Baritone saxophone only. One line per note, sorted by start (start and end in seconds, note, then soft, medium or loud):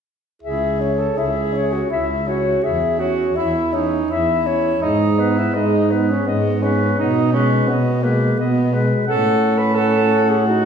0.43 1.08 C#2 soft
1.17 1.82 C#2 soft
1.91 2.55 C#2 soft
2.64 3.28 E2 soft
3.37 4.02 E2 soft
4.11 4.74 E2 soft
4.82 5.47 G#2 soft
5.55 6.18 G#2 soft
6.27 6.90 G#2 soft
6.99 7.61 B2 soft
7.69 8.30 B2 soft
8.39 8.91 B2 soft
9.08 10.65 A2 soft